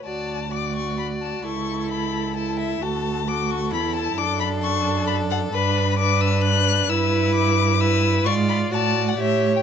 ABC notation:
X:1
M:3/4
L:1/16
Q:1/4=132
K:D
V:1 name="Violin"
a4 d'2 c'2 b2 a2 | c'4 b4 a2 e2 | a4 d'2 c'2 b2 a2 | d'2 b2 c'4 b2 f2 |
b4 d'2 e'2 f'4 | e'4 d'4 e'4 | c'2 b2 a3 f e3 g |]
V:2 name="Violin"
d4 d8 | A8 A4 | A4 A8 | A12 |
B4 B8 | B8 B4 | d4 d4 c4 |]
V:3 name="Viola"
F4 F8 | E8 E4 | F4 F4 E4 | D12 |
D4 D8 | E8 E4 | ^E4 F4 G4 |]
V:4 name="Cello" clef=bass
D,,12 | C,,12 | D,,8 E,,4 | F,,12 |
G,,12 | G,,12 | ^G,,4 A,,4 A,,4 |]